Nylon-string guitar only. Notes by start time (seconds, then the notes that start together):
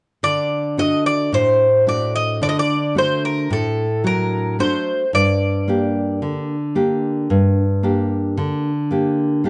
0.23 D3
0.77 A3 D4 F#4
1.32 A2
1.87 A3 D4 F#4
2.42 D3
2.95 A3 D4 F#4
3.50 A2
4.04 F#3 D4 F#4
4.59 A3 D4 F#4
5.13 G2
5.68 A#3 D4 G4
6.22 D3
6.75 A#3 D4 G4
7.30 G2
7.83 A#3 D4 G4
8.37 D3
8.91 A#3 D4 G4
9.44 A#3 D4 G4